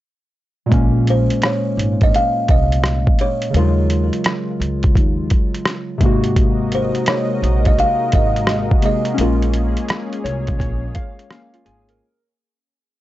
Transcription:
0.66 A#2 G#3
0.71 A#1 A#3 C#4, kick, closed hi-hat
1.07 C5, closed hi-hat
1.30 closed hi-hat
1.42 C#5, cross-stick, closed hi-hat
1.77 G#1, closed hi-hat
2.01 D#5, kick, closed hi-hat
2.14 F5, closed hi-hat
2.48 C2 D#5, kick, closed hi-hat
2.72 closed hi-hat
2.84 cross-stick, closed hi-hat
3.07 kick
3.19 C#5, closed hi-hat
3.42 closed hi-hat
3.50 D#2 C#3 F3
3.54 G#3 F4 A#4, closed hi-hat
3.59 F#3
3.90 closed hi-hat
4.13 closed hi-hat
4.24 cross-stick, closed hi-hat
4.60 C#2, closed hi-hat
4.83 kick, closed hi-hat
4.95 D#2, kick, closed hi-hat
5.30 kick, closed hi-hat
5.54 closed hi-hat
5.65 cross-stick, closed hi-hat
5.98 G#1 C3 G#3, kick, closed hi-hat
6.03 A#3 F#4
6.24 closed hi-hat
6.36 G#3 D#4 F#4 A#4 D#5, kick, closed hi-hat
6.72 C5, closed hi-hat
6.95 closed hi-hat
7.06 C#5, cross-stick, closed hi-hat
7.42 A#1, closed hi-hat
7.65 D#5, kick, closed hi-hat
7.79 F5, closed hi-hat
8.12 G#1 D#5, kick, closed hi-hat
8.36 closed hi-hat
8.47 cross-stick, closed hi-hat
8.71 kick
8.81 C3 G#3 A#3, closed hi-hat
8.85 G#4 D#5
9.05 closed hi-hat
9.14 G#3 C#4
9.18 A#1 A#3 C#4 F4 G#4 A#4, closed hi-hat
9.42 closed hi-hat
9.54 closed hi-hat
9.77 closed hi-hat
9.88 cross-stick, closed hi-hat
10.13 closed hi-hat
10.24 C2 C#5, closed hi-hat
10.47 kick, closed hi-hat
10.59 A#1 C#5, kick, closed hi-hat
10.95 F5, kick, closed hi-hat
11.19 closed hi-hat
11.31 A#3 C#4 F5, cross-stick, closed hi-hat
11.54 C#4 F4, closed hi-hat
11.65 G#1 F4 G#4 G#5, closed hi-hat
11.89 A#4, closed hi-hat

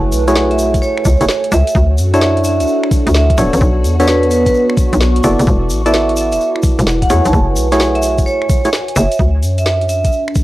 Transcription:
Already playing: F#1 A3 E4 F#4 G#4 B4 C#5 F#5
0.12 B1, open hi-hat, shaker
0.28 A3 E4 F#4 G#4 C#5, closed hi-hat, shaker
0.36 snare, shaker
0.45 C#5
0.51 E5, closed hi-hat
0.59 open hi-hat, shaker
0.74 F#1 G#5, kick, closed hi-hat, shaker
0.82 C#5, shaker
0.98 finger snap
1.05 C#2, kick, open hi-hat, shaker
1.21 F#1 A3 E4 F#4 G#4 C#5, closed hi-hat, shaker
1.29 snare, shaker
1.44 closed hi-hat
1.52 C#2 E5, finger snap, open hi-hat, shaker
1.67 closed hi-hat, shaker
1.75 D2 D4 F#4, kick, shaker
1.98 F#2, open hi-hat, shaker
2.14 D4 E4 F#4 A4 C#5 E5, closed hi-hat, shaker
2.20 A4 E5, snare, shaker
2.29 E5
2.37 closed hi-hat
2.44 E5, open hi-hat, shaker
2.60 D2 E5, closed hi-hat, shaker
2.67 shaker
2.83 finger snap
2.91 kick, open hi-hat, shaker
3.07 D2, closed hi-hat, shaker
3.14 E5, snare, shaker
3.30 kick, closed hi-hat
3.38 D1 B3 D4 F#4 A4 C#5, finger snap, open hi-hat, shaker
3.53 A1, closed hi-hat, shaker
3.61 B1 B3, kick, shaker
3.77 F#4
3.84 E2, open hi-hat, shaker
3.97 B3 D4 F#4 A4 B4 C#5 C#6, closed hi-hat, shaker
4.07 B4, snare, shaker
4.23 closed hi-hat
4.31 B4, open hi-hat, shaker
4.46 B1 B4, kick, closed hi-hat, shaker
4.54 shaker
4.70 finger snap
4.77 kick, open hi-hat, shaker
4.93 B1, closed hi-hat, shaker
5.01 snare, shaker
5.16 closed hi-hat
5.23 F#1 B3 E4 F#4 A4 D5, finger snap, open hi-hat, shaker
5.39 F#1, closed hi-hat, shaker
5.47 E1 E4, kick, shaker
5.70 A1, open hi-hat, shaker
5.86 B3 E4 F#4 A4 D5 E5, closed hi-hat, shaker
5.94 E5, snare, shaker
6.09 B4, closed hi-hat
6.16 E5, open hi-hat, shaker
6.21 F#5
6.32 E1 E5, closed hi-hat, shaker
6.41 shaker
6.56 finger snap
6.63 kick, open hi-hat, shaker
6.79 E1, closed hi-hat, shaker
6.87 snare, shaker
7.02 F#5, kick, closed hi-hat
7.10 E2 A3 E4 F#4 G#4 C#5, finger snap, open hi-hat, shaker
7.25 B1 A5, closed hi-hat, shaker
7.33 F#1 F#4, kick, shaker
7.56 B1, open hi-hat, shaker
7.69 A3 E4 F#4 G#4 C#5, snare, closed hi-hat, shaker
7.80 snare, shaker
7.95 E5, closed hi-hat
8.02 open hi-hat, shaker
8.18 F#1 G#5, kick, closed hi-hat, shaker
8.26 C#5, shaker
8.42 finger snap
8.49 kick, open hi-hat, shaker
8.65 A3 E4 F#4 G#4 C#5, closed hi-hat, shaker
8.73 snare, shaker
8.88 closed hi-hat
8.96 F#1 E5, finger snap, open hi-hat, shaker
9.12 closed hi-hat, shaker
9.19 D2 D4, kick
9.43 F#2, open hi-hat, shaker
9.58 E5, closed hi-hat, shaker
9.66 E5, snare, shaker
9.79 A4, closed hi-hat
9.89 E5, open hi-hat, shaker
10.04 D2 E5, kick, closed hi-hat, shaker
10.12 shaker
10.28 finger snap
10.35 kick, open hi-hat, shaker

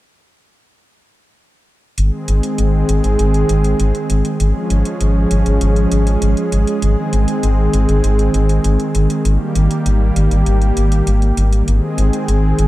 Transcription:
1.98 G#1 D#3 G#3 C4 G#4, closed hi-hat
2.28 G#1, closed hi-hat
2.43 closed hi-hat
2.58 G#1, closed hi-hat
2.89 G#1, closed hi-hat
3.04 G#1, closed hi-hat
3.19 G#1, closed hi-hat
3.34 closed hi-hat
3.49 G#1, closed hi-hat
3.64 closed hi-hat
3.80 G#1, closed hi-hat
3.95 closed hi-hat
4.10 G#1, closed hi-hat
4.25 closed hi-hat
4.40 G#1 F3 G#3 C#4 G#4, closed hi-hat
4.70 G#1, closed hi-hat
4.85 closed hi-hat
5.01 G#1, closed hi-hat
5.31 G#1, closed hi-hat
5.46 G#1, closed hi-hat
5.61 G#1, closed hi-hat
5.76 closed hi-hat
5.92 G#1, closed hi-hat
6.07 closed hi-hat
6.22 G#1, closed hi-hat
6.37 closed hi-hat
6.52 G#1, closed hi-hat
6.67 closed hi-hat
6.82 G#1 D#3 C4, closed hi-hat
7.13 G#1, closed hi-hat
7.28 closed hi-hat
7.43 G#1, closed hi-hat
7.73 G#1, closed hi-hat
7.89 G#1, closed hi-hat
8.04 G#1, closed hi-hat
8.19 closed hi-hat
8.34 G#1, closed hi-hat
8.49 closed hi-hat
8.64 G#1, closed hi-hat
8.80 closed hi-hat
8.95 G#1, closed hi-hat
9.10 closed hi-hat
9.25 G#1 G3 A#3 G4, closed hi-hat
9.55 G#1, closed hi-hat
9.71 closed hi-hat
9.86 G#1, closed hi-hat
10.16 G#1, closed hi-hat
10.31 G#1, closed hi-hat
10.46 G#1, closed hi-hat
10.62 closed hi-hat
10.77 G#1, closed hi-hat
10.92 closed hi-hat
11.07 G#1, closed hi-hat
11.22 closed hi-hat
11.37 G#1, closed hi-hat
11.53 closed hi-hat
11.68 G#1 D#3 G#3 C4 G#4, closed hi-hat
11.98 G#1, closed hi-hat
12.13 closed hi-hat
12.28 G#1, closed hi-hat
12.59 G#1, closed hi-hat

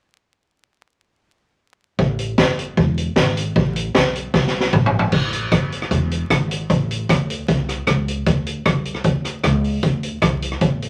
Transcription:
1.99 A1, kick
2.19 closed hi-hat
2.38 G1, kick, snare
2.59 closed hi-hat
2.77 E1, kick
2.98 closed hi-hat
3.16 G#1, kick, snare
3.37 closed hi-hat
3.56 A1, kick
3.76 closed hi-hat
3.95 B1, kick, snare
4.16 closed hi-hat
4.34 C2, kick, snare
4.47 snare
4.60 snare
4.73 G#1, kick, mid tom
4.86 floor tom
4.99 floor tom
5.12 A1, kick, crash
5.33 closed hi-hat
5.52 G1, kick, cross-stick, closed hi-hat
5.72 closed hi-hat
5.82 cross-stick
5.91 E1, kick, closed hi-hat
6.11 closed hi-hat
6.30 G#1, kick, cross-stick, closed hi-hat
6.51 closed hi-hat
6.70 A1, kick, closed hi-hat
6.91 closed hi-hat
7.09 D2, kick, cross-stick, closed hi-hat
7.30 closed hi-hat
7.48 C2, kick, closed hi-hat
7.69 cross-stick, closed hi-hat
7.87 C#2, kick, cross-stick, closed hi-hat
8.08 closed hi-hat
8.26 D2, kick, closed hi-hat
8.47 closed hi-hat
8.66 C2, kick, cross-stick, closed hi-hat
8.85 closed hi-hat
8.94 cross-stick
9.04 D2, kick, closed hi-hat
9.25 cross-stick, closed hi-hat
9.44 C#2, kick, cross-stick, closed hi-hat
9.64 open hi-hat
9.83 D2, kick, closed hi-hat
10.03 closed hi-hat
10.22 C2, kick, cross-stick, closed hi-hat
10.42 closed hi-hat
10.52 cross-stick
10.61 A1, kick, closed hi-hat
10.82 closed hi-hat

